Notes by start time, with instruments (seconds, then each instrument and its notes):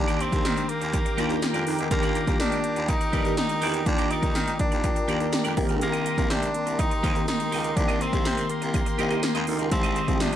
Already playing: baritone saxophone D#2, fm electric piano D#3 A#3 D4 G4 A#4 D5, tenor saxophone D4, analog synth pad A#4 G5 A#5 D6
0.07 clean electric guitar G4 A#4 D5, closed hi-hat, shaker
0.20 tenor saxophone C4, clean electric guitar G4 A#4 D5, closed hi-hat, shaker
0.32 baritone saxophone D#2, fm electric piano D#3 A#3 D4 G4, muted clean electric guitar stroke, kick, closed hi-hat, shaker
0.44 baritone saxophone D#3, muted clean electric guitar stroke, snare, closed hi-hat, tambourine, shaker
0.56 muted clean electric guitar stroke, closed hi-hat, shaker
0.69 tenor saxophone A#3, closed hi-hat
0.81 baritone saxophone D#2, muted clean electric guitar stroke, closed hi-hat, shaker
0.93 muted clean electric guitar stroke, kick, closed hi-hat, shaker
1.05 muted clean electric guitar stroke, closed hi-hat, shaker
1.17 baritone saxophone D#2, fm electric piano D#3 A#3 D4 F4, clean electric guitar G4 A#4 D5, closed hi-hat, shaker
1.30 analog polysynth D#4 G4 A#4, muted clean electric guitar stroke, closed hi-hat, shaker
1.42 muted clean electric guitar stroke, snare, closed hi-hat, tambourine, shaker
1.54 baritone saxophone F2, clean electric guitar G4 A#4 D5, closed hi-hat, shaker
1.66 baritone saxophone F2, analog polysynth D#4 G4 A#4, muted clean electric guitar stroke, open hi-hat
1.78 baritone saxophone E2, muted clean electric guitar stroke, closed hi-hat, shaker
1.91 baritone saxophone D#2, fm electric piano D#3 A#3 D4 G4, tenor saxophone A#3, muted clean electric guitar stroke, kick, closed hi-hat, shaker
2.02 clean electric guitar G4 A#4 D5, closed hi-hat, shaker
2.14 clean electric guitar G4 A#4 D5, closed hi-hat, shaker
2.27 baritone saxophone D#2, fm electric piano D#3 A#3 D4 G4, muted clean electric guitar stroke, kick, closed hi-hat, shaker
2.39 baritone saxophone D#3, tenor saxophone D4, muted clean electric guitar stroke, snare, closed hi-hat, tambourine, shaker
2.52 muted clean electric guitar stroke, closed hi-hat, shaker
2.64 closed hi-hat
2.76 baritone saxophone D#2, muted clean electric guitar stroke, closed hi-hat, shaker
2.88 tenor saxophone D#4, muted clean electric guitar stroke, kick, closed hi-hat, shaker
3.00 muted clean electric guitar stroke, closed hi-hat, shaker
3.12 baritone saxophone G2, fm electric piano D#3 A#3 A#4 D5, clean electric guitar G4 A#4 D5, kick, closed hi-hat, shaker
3.25 analog polysynth D#4 G4 A#4, muted clean electric guitar stroke, closed hi-hat, shaker
3.37 tenor saxophone D#4, muted clean electric guitar stroke, snare, closed hi-hat, tambourine, shaker
3.49 muted clean electric guitar stroke, closed hi-hat, shaker
3.61 baritone saxophone E2, analog polysynth D#4 G4 A#4, clean electric guitar G4 A#4 D5, open hi-hat
3.74 muted clean electric guitar stroke, closed hi-hat, shaker
3.86 baritone saxophone D#2, fm electric piano D#3 A#3 D4 F4, tenor saxophone D4, muted clean electric guitar stroke, kick, closed hi-hat, shaker
3.98 clean electric guitar G4 A#4 D5, closed hi-hat, shaker
4.10 tenor saxophone D#4, clean electric guitar G4 A#4 D5, closed hi-hat, shaker
4.22 baritone saxophone D#2, fm electric piano D#3 A#3 A#4 D5, muted clean electric guitar stroke, kick, closed hi-hat, shaker
4.35 baritone saxophone D#3, muted clean electric guitar stroke, snare, closed hi-hat, tambourine, shaker
4.47 muted clean electric guitar stroke, closed hi-hat, shaker
4.59 tenor saxophone D4, kick, closed hi-hat
4.71 baritone saxophone D#2, muted clean electric guitar stroke, closed hi-hat, shaker
4.84 muted clean electric guitar stroke, kick, closed hi-hat, shaker
4.96 muted clean electric guitar stroke, closed hi-hat, shaker
5.08 baritone saxophone D#2, fm electric piano D#3 A#3 D4 G4, clean electric guitar G4 A#4 D5, closed hi-hat, shaker
5.20 analog polysynth D#4 G4 A#4, muted clean electric guitar stroke, closed hi-hat, shaker
5.32 muted clean electric guitar stroke, snare, closed hi-hat, tambourine, shaker
5.44 baritone saxophone F2, clean electric guitar G4 A#4 D5, closed hi-hat, shaker
5.56 baritone saxophone C2, fm electric piano D#3 A#3 C4 G4, analog polysynth D#4 G4 A#4, analog synth pad C6, muted clean electric guitar stroke, kick, open hi-hat
5.69 baritone saxophone C#2, muted clean electric guitar stroke, closed hi-hat, shaker
5.81 baritone saxophone C2, tenor saxophone A#3, muted clean electric guitar stroke, closed hi-hat, shaker
5.93 clean electric guitar G4 A#4 D#5, closed hi-hat, shaker
6.05 clean electric guitar G4 A#4 D#5, closed hi-hat, shaker
6.17 baritone saxophone C2, fm electric piano D#3 A#3 C4 G4, muted clean electric guitar stroke, kick, closed hi-hat, shaker
6.30 baritone saxophone C3, tenor saxophone D4, muted clean electric guitar stroke, snare, closed hi-hat, tambourine, shaker
6.42 muted clean electric guitar stroke, closed hi-hat, shaker
6.54 closed hi-hat
6.66 baritone saxophone C2, muted clean electric guitar stroke, closed hi-hat, shaker
6.79 tenor saxophone D#4, muted clean electric guitar stroke, kick, closed hi-hat, shaker
6.91 muted clean electric guitar stroke, closed hi-hat, shaker
7.03 baritone saxophone D#2, fm electric piano D#3 A#3 C4 A#4, clean electric guitar G4 A#4 D#5, kick, closed hi-hat, shaker
7.15 analog polysynth D#4 G4 A#4, muted clean electric guitar stroke, closed hi-hat, shaker
7.28 tenor saxophone D#4, muted clean electric guitar stroke, snare, closed hi-hat, tambourine, shaker
7.40 muted clean electric guitar stroke, closed hi-hat, shaker
7.52 baritone saxophone C#2, analog polysynth D#4 G4 A#4, clean electric guitar G4 A#4 D#5, open hi-hat
7.64 muted clean electric guitar stroke, closed hi-hat, shaker
7.76 baritone saxophone C2, fm electric piano D#3 A#3 C4 A#4, tenor saxophone D4, muted clean electric guitar stroke, kick, closed hi-hat, shaker
7.88 clean electric guitar G4 A#4 D#5, closed hi-hat, shaker
8.00 tenor saxophone C4, clean electric guitar G4 A#4 D#5, closed hi-hat, shaker
8.13 baritone saxophone C2, fm electric piano D#3 A#3 C4 G4, muted clean electric guitar stroke, kick, closed hi-hat, shaker
8.25 baritone saxophone C3, muted clean electric guitar stroke, snare, closed hi-hat, tambourine, shaker
8.37 muted clean electric guitar stroke, closed hi-hat, shaker
8.50 tenor saxophone A#3, closed hi-hat
8.62 baritone saxophone C2, muted clean electric guitar stroke, closed hi-hat, shaker
8.74 muted clean electric guitar stroke, kick, closed hi-hat, shaker
8.86 muted clean electric guitar stroke, closed hi-hat, shaker
8.98 baritone saxophone C2, fm electric piano D#3 A#3 C4 G4, clean electric guitar G4 A#4 D#5, closed hi-hat, shaker
9.10 analog polysynth D#4 G4 A#4, clean electric guitar G4 A#4 D#5, closed hi-hat, shaker
9.23 muted clean electric guitar stroke, snare, closed hi-hat, tambourine, shaker
9.35 baritone saxophone D#2, clean electric guitar G4 A#4 D#5, closed hi-hat, shaker
9.47 baritone saxophone D2, analog polysynth D#4 G4 A#4, muted clean electric guitar stroke, open hi-hat
9.59 baritone saxophone C#2, muted clean electric guitar stroke, closed hi-hat, shaker
9.71 baritone saxophone C2, fm electric piano D#3 G#3 C4 G4, analog synth pad G#3 G5 D#6, tenor saxophone C4, muted clean electric guitar stroke, kick, closed hi-hat, shaker
9.83 clean electric guitar G4 C5 D#5, closed hi-hat, shaker
9.95 clean electric guitar G4 C5 D#5, closed hi-hat, shaker
10.08 baritone saxophone C2, fm electric piano D#3 G#3 C4 F4, muted clean electric guitar stroke, kick, closed hi-hat, shaker
10.15 fm electric piano G4
10.20 baritone saxophone C3, tenor saxophone D4, muted clean electric guitar stroke, snare, closed hi-hat, tambourine, shaker
10.32 muted clean electric guitar stroke, closed hi-hat